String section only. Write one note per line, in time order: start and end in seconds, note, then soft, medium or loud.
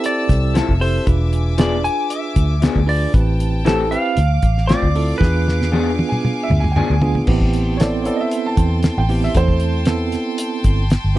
0.00 3.10 E5 medium
0.00 1.05 A5 medium
0.00 1.05 E6 medium
1.08 3.13 G#5 medium
1.08 3.12 D6 medium
3.15 4.17 G5 medium
3.15 4.17 A5 medium
4.19 7.26 F5 medium
4.19 7.26 D6 medium
5.23 7.27 G#5 medium
7.28 11.19 G5 medium
7.28 11.19 A5 medium
7.28 11.19 C6 medium